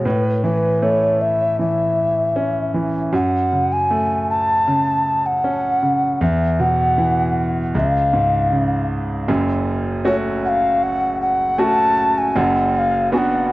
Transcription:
0.05 3.09 A2 medium
0.05 0.43 B4 medium
0.44 1.58 E3 soft
0.44 0.84 B4 medium
0.82 2.32 A3 soft
0.82 1.23 C#5 medium
1.21 1.60 E5 medium
1.59 2.73 E3 soft
1.59 2.71 E5 medium
2.36 3.11 C#4 soft
2.74 3.12 E3 soft
3.13 6.17 F#2 medium
3.13 3.74 F#5 medium
3.52 4.66 C#3 soft
3.72 4.29 G#5 medium
3.90 5.40 A3 soft
4.30 5.28 A5 medium
4.67 5.81 C#3 medium
5.26 6.22 F#5 medium
5.44 6.19 C#4 soft
5.83 6.20 C#3 soft
6.21 7.71 E2 medium
6.21 6.62 E5 medium
6.60 7.71 B2 soft
6.60 7.48 F#5 medium
6.98 7.72 E3 soft
7.75 9.25 C#2 medium
7.75 8.87 F5 medium
8.13 9.25 G#2 soft
8.52 9.26 C#3 soft
9.28 12.32 F#1 medium
9.28 12.32 F#2 medium
10.04 10.80 A3 soft
10.04 10.80 C#4 soft
10.04 10.80 F#4 medium
10.04 10.15 C#5 medium
10.45 10.85 F5 medium
10.45 10.49 F#5 medium
10.83 11.21 F#5 loud
11.21 11.60 F#5 loud
11.58 12.33 A3 medium
11.58 12.34 C#4 soft
11.58 12.34 F#4 medium
11.58 12.19 A5 loud
12.18 12.38 G#5 loud
12.35 13.52 F#1 medium
12.35 13.52 F#2 medium
12.35 12.75 F#5 loud
12.75 13.12 F5 loud
12.75 12.80 F#5 medium
13.12 13.52 B3 medium
13.12 13.52 D4 soft
13.12 13.52 F#4 medium
13.12 13.19 G#5 medium
13.18 13.52 F#5 loud

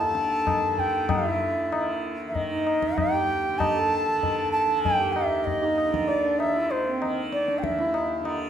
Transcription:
0.00 2.89 D#2 medium
0.00 0.11 D3 medium
0.00 0.70 D#3 medium
0.00 1.22 A4 medium
0.00 0.81 A5 loud
0.11 1.09 D3 medium
0.11 tabla te medium
0.47 tabla na medium
0.47 tabla ge medium
0.70 1.71 D#3 medium
0.78 1.11 G5 medium
0.78 tabla ge soft
1.09 3.48 D3 medium
1.09 2.04 E5 medium
1.09 tabla na medium
1.09 tabla ge medium
1.18 1.25 G4 soft
1.25 2.15 E4 medium
1.71 2.30 D#3 soft
1.71 tabla na medium
2.28 4.07 D#3 medium
2.28 2.36 E5 medium
2.35 2.98 D#5 medium
2.35 tabla tin medium
2.35 tabla ge medium
2.51 3.15 D#4 medium
2.67 tabla na medium
2.82 tabla ke medium
2.89 5.25 D#2 medium
2.97 3.60 G5 loud
2.97 tabla na medium
2.97 tabla ge medium
3.13 3.78 G4 medium
3.48 5.84 D3 medium
3.59 4.52 A5 loud
3.59 tabla na medium
3.59 tabla ge medium
3.77 5.05 A4 medium
4.07 4.66 D#3 medium
4.23 tabla tin medium
4.23 tabla ge medium
4.52 4.82 A5 medium
4.66 6.43 D#3 medium
4.83 5.14 G5 medium
4.83 tabla tin medium
4.83 tabla ge medium
5.00 5.64 G4 medium
5.13 5.46 E5 medium
5.13 tabla na medium
5.26 7.61 D#2 medium
5.44 6.09 D#5 medium
5.44 tabla tin medium
5.44 tabla ge medium
5.62 6.26 D#4 medium
5.78 tabla na medium
5.84 8.19 D3 medium
5.94 tabla ke medium
6.08 6.40 D5 medium
6.08 tabla tin medium
6.24 6.56 D4 medium
6.39 6.72 E5 medium
6.39 tabla na medium
6.43 7.02 D#3 medium
6.55 6.84 E4 medium
6.71 7.07 C5 medium
6.71 tabla tin medium
6.87 7.21 C4 medium
7.02 8.50 D#3 medium
7.02 tabla na medium
7.32 7.60 D5 medium
7.32 tabla te medium
7.48 7.80 D4 medium
7.48 tabla te medium
7.59 8.50 D#2 medium
7.59 7.65 G5 medium
7.63 8.25 E5 medium
7.63 tabla ke medium
7.79 8.37 E4 medium
7.79 tabla te medium
7.94 tabla na medium
8.20 8.50 D3 medium
8.25 tabla na medium

